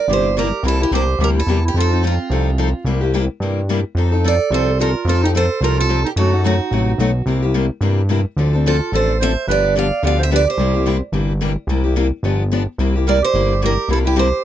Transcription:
Already playing: D5
0.08 G1 C3 G3 A#3 E4 G4
0.13 C5
0.37 C3 G3 A#3 E4 G4 A#4
0.63 C2 C3 G3 A#3 E4 G4
0.68 A4
0.80 A#3 E4 G4
0.92 C2 C3 G3 A#3 E4 G4 C5
1.19 D2 C3 G3 A#3 E4 G4
1.24 A#4
1.37 E4 A4
1.47 E2 C3 G3 A#3 E4 G4
1.65 E4 G4
1.74 F2 F3 C4 D#4 F4 A4
1.80 A4
1.91 C4 D#4 A4
2.03 F3 C4 D#4 A4
2.07 F4
2.30 C2 F3 C4 D#4 A4
2.58 F3 C4 D#4 A4
2.85 C2 C3 G3 A#3 E4 G4
3.01 A#3 E4 G4
3.14 C3 G3 A#3 E4 G4
3.40 G2 C3 G3 A#3 E4 G4
3.69 C3 G3 A#3 E4 G4
3.95 F2 F3 C4 D#4 A4
4.12 C4 D#4 A4
4.24 F3 C4 D#4 A4 D5
4.51 C2 F3 C4 D#4 A4 C5
4.80 F3 C4 D#4 F4 A4 A#4
5.05 F2 F3 C4 D#4 F4
5.09 A4
5.23 C4 D#4 G4 A4
5.35 F3 C4 D#4 A4 C5
5.61 C2 F3 C4 D#4 F4 A4 A#4
5.78 F4 A4
5.89 F3 C4 D#4 A4
6.05 D#4 G4
6.16 F#2 C3 F#3 A3 D#4 F#4 A4
6.33 A3 D#4 F#4
6.44 C3 F#3 A3 D#4 F#4
6.71 A1 C3 F#3 A3 D#4 F#4
6.98 B1 C3 F#3 A3 D#4 F#4
7.26 C2 C3 G3 A#3 E4 G4
7.42 A#3 E4 G4
7.54 C3 G3 A#3 E4 G4
7.81 G2 C3 G3 A#3 E4 G4
8.09 C3 G3 A#3 E4 G4
8.37 D2 D3 F3 C4 D4 A4
8.53 C4 D4 A4
8.66 D3 F3 C4 D4 F4 A4
8.92 A1 D3 F3 C4 D4 A4 C5
9.20 D3 F3 C4 D4 A4 C5 E5
9.47 G1 D3 F3 B3 D4 G4 B4 D5
9.64 B3 D4 G4
9.76 D3 F3 B3 D4 G4 D5 F5
10.03 D2 D3 F3 B3 D4 G4 D5
10.07 F5
10.19 C5 E5
10.31 D3 F3 B3 D4 G4 B4
10.36 D5
10.48 G4 C5
10.58 C2 C3 G3 A#3 E4 G4
10.74 A#3 E4 G4
10.86 C3 G3 A#3 E4 G4
11.12 G1 C3 G3 A#3 E4 G4
11.41 C3 G3 A#3 E4 G4
11.67 C2 C3 G3 A#3 E4 G4
11.84 A#3 E4 G4
11.96 C3 G3 A#3 E4 G4
12.23 G1 D3 F3 B3 D4 G4
12.51 D3 F3 B3 D4 G4
12.78 C2 C3 G3 A#3 E4 G4
12.96 A#3 E4 G4
13.07 C3 G3 A#3 E4 G4 A#4 D5
13.23 G4 C5
13.34 G1 C3 G3 A#3 E4 G4
13.62 C3 G3 A#3 E4 G4 A#4
13.88 C2 C3 G3 A#3 E4 G4
13.93 A4
14.05 A#3 E4 G4
14.16 C3 G3 A#3 E4 G4 C5

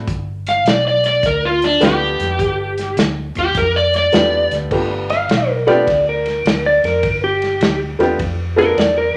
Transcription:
0.08 G1, kick, closed hi-hat
0.47 F5, snare, closed hi-hat
0.65 B1 D5, snare, closed hi-hat
0.88 D5
1.04 D5, snare, closed hi-hat
1.23 D2 A#4, kick, closed hi-hat
1.45 F4
1.62 D4, snare, closed hi-hat
1.80 D2 A3 B3 D4 F4 G4, snare, closed hi-hat
1.85 G4
2.19 F2, snare, closed hi-hat
2.39 G1, kick, closed hi-hat
2.78 snare, closed hi-hat
2.97 D2, snare, closed hi-hat
3.35 E2 G4, kick, snare, closed hi-hat
3.55 F2 A#4, kick, snare, closed hi-hat
3.76 D5
3.94 D5, snare, closed hi-hat
4.12 E2 A3 B3 D4 F4 G4, snare, closed hi-hat
4.51 D2, snare, closed hi-hat
4.71 G1 A3 B3 D4 F4 G4, kick, crash
5.10 F5, snare, ride
5.29 B1, snare, ride
5.49 A#4
5.67 A3 B3 D4 F4 G4 D5, snare, ride
5.87 D2, kick, snare, ride
6.09 A#4
6.26 snare, ride
6.45 D2, snare, ride
6.66 D5
6.84 F2 A#4, snare, ride
7.03 G1, kick, ride
7.24 G4
7.42 snare, ride
7.61 D2, snare, ride
7.99 E2 A3 B3 D4 F4 G4, snare, ride
8.19 F2, kick, ride
8.56 A3 B3 D4 F4 A4 A#4, snare, ride
8.76 E2 D5, snare, ride
8.98 A#4

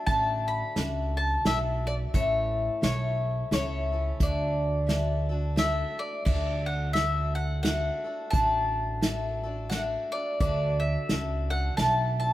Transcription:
0.06 A1 D3 A3 D4 F#4 A4 A5, kick, closed hi-hat
0.48 B5
0.76 C#2 A3 D4 F#4 A4, snare, closed hi-hat
1.17 A5
1.45 B1 A3 D4 F#4 A4 E5, snare, closed hi-hat
1.87 D5
2.14 A1 A2 E3 A3 C#4 E4 A4 C#5, kick, closed hi-hat
2.81 B1 A3 C#4 E4 A4 C#5, snare, closed hi-hat
3.51 C#2 A3 C#4 E4 A4 C#5, snare, closed hi-hat
3.92 A3 C#4 E4 A4
4.20 D2 D3 A3 D4 F#4 A4 D5, kick, closed hi-hat
4.87 A3 D4 F#4 A4, snare, closed hi-hat
5.29 D4 F#4 A4
5.56 A3 D4 F#4 A4 E5, snare, closed hi-hat
5.99 D5
6.25 D2 D3 A3 D4 F#4 A4 D5, kick, crash
6.66 F#5
6.93 A3 D4 F#4 A4 E5, snare, closed hi-hat
7.35 F#5
7.63 A3 D4 F#4 A4 F#5, snare, closed hi-hat
8.04 D4 F#4 A4
8.30 A1 D3 A3 D4 F#4 A4 A5, kick, closed hi-hat
9.01 A3 D4 F#4 A4, snare, closed hi-hat
9.43 D4 F#4 A4
9.70 A3 D4 F#4 A4 F#5, snare, closed hi-hat
10.12 D4 F#4 A4 D5
10.40 D2 D3 A3 D4 F#4 A4 D5, kick, closed hi-hat
10.80 E5
11.09 C#2 A3 D4 F#4 A4, snare, closed hi-hat
11.50 D4 F#4 A4 F#5
11.77 B1 A3 D4 F#4 A4 A5, snare, closed hi-hat
12.20 D4 F#4 A4 A5

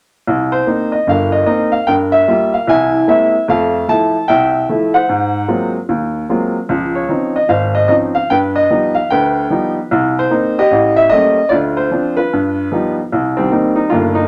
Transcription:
0.27 C2
0.52 C5
0.67 A#3 C4 D#4
0.92 D#5
1.07 G1 G2 A#4 F5
1.32 D#5
1.46 A#3 C4 D#4 D#5
1.72 F5
1.87 G2 A#4 G5
2.12 E5
2.28 G3 A#3 F4
2.54 F5
2.67 C2 E3 E5 G#5
3.07 G#3 A#3 C4 E4 E5
3.48 F2 A3 A4 F5
3.88 F3 A3 E4 A5
4.28 C2 E5 G5
4.69 F3 A3 E4
4.94 C5 F#5
5.09 G#2
5.48 F#3 G#3 A#3 C4 F4
5.89 D#2
6.29 F#3 G#3 A#3 C4 F4
6.69 C#2 F3
6.95 C#5
7.09 F3 C4 C#4 D#4
7.36 D#5
7.49 G#1 C5 F5
7.75 D#5
7.88 F3 C4 C#4 D#4 D#5
8.15 F5
8.30 G2 B4 G5
8.56 D#5
8.70 F3 G3 B3 D#4
8.95 F5
9.10 D2 B4 G5
9.50 F3 G3 B3 D#4
9.91 C2
10.19 C5
10.30 A#3 C4 D#4
10.59 G4 D#5
10.71 A1
10.96 E5
11.10 G3 A3 A#3 C#4 D#5
11.49 D2 F4 D5
11.77 C5
11.91 F3 C4 D4
12.17 F4 B4
12.33 G2
12.72 F3 G3 B3 D#4
13.12 C2
13.37 D#3 G3 C4
13.51 A#3 C4 D#4
13.76 D#4
13.90 G1 G2 A#3 F4
14.15 D#4

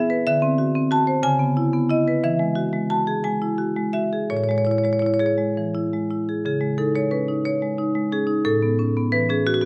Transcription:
Already playing: E3 G#4 E5
0.10 B4
0.27 D3 E5
0.42 C4
0.58 F#4
0.75 C4
0.91 F#4 A5
1.07 C5
1.23 C#3 G#5
1.39 B3
1.57 E4
1.73 B3
1.90 E4 D#5
2.08 B4
2.24 E3 E5
2.39 G#3
2.55 F#4
2.73 G#3
2.90 F#4 A5
3.07 G#4
3.24 G#3 G#5
3.42 E4
3.58 F#4
3.76 G#3
3.93 F#4 E5
4.13 G#4
4.30 A2 C#5
4.37 C#5
4.44 C#5
4.49 G#3 C#5
4.58 C#5
4.65 E4 C#5
4.71 C#5
4.78 C#5
4.84 G#3 C#5
4.93 C#5
4.99 E4 C#5
5.06 C#5
5.14 C#5
5.19 G#4 C#5
5.26 C#5
5.38 G#3
5.57 E3
5.75 E4
5.93 G#3
6.11 E4
6.29 G#4
6.45 C#3 G#4
6.61 G#3
6.78 D#4 A4
6.95 G#3 C#5
7.11 C#4 B4
7.28 D#4
7.45 C#5
7.62 G#3
7.78 D#4
7.95 G#3
8.12 C#4 G#4
8.27 D#4
8.45 A2 A4
8.63 B3
8.79 C#4
8.97 B3
9.12 E3 B4
9.29 C#4 G#4
9.47 F#4
9.54 F#4
9.61 B3 F#4

